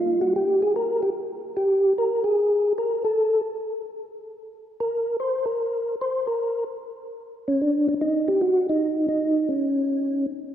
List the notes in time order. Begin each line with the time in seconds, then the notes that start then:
Already playing: F4
0.21 F#4
0.36 G4
0.62 G#4
0.76 A#4
1.03 G4
1.57 G4
1.98 A#4
2.24 G#4
2.78 A#4
3.04 A4
4.80 A#4
5.20 C5
5.46 A#4
6.01 C5
6.27 A#4
7.48 C#4
7.61 D4
7.88 D4
8.01 D#4
8.28 G4
8.41 F#4
8.69 D#4
9.09 D#4
9.49 C#4